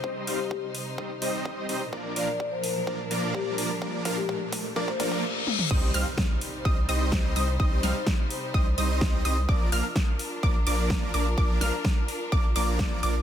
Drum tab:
CC |----------------|----------------|----------------|x---------------|
HH |--o---o---o---o-|--o---o---o---o-|--o---o---o-----|--o---o---o---o-|
SD |----------------|----------------|----------------|----o-------o---|
T1 |----------------|----------------|--------------o-|----------------|
T2 |----------------|----------------|---------------o|----------------|
BD |o---o---o---o---|o---o---o---o---|o-o-o-o-oooo----|o---o---o---o---|

CC |----------------|----------------|----------------|
HH |--o---o---o---o-|--o---o---o---o-|--o---o---o---o-|
SD |--o-o-------o---|----o-------o---|--o-o-------o---|
T1 |----------------|----------------|----------------|
T2 |----------------|----------------|----------------|
BD |o---o---o---o---|o---o---o---o---|o---o---o---o---|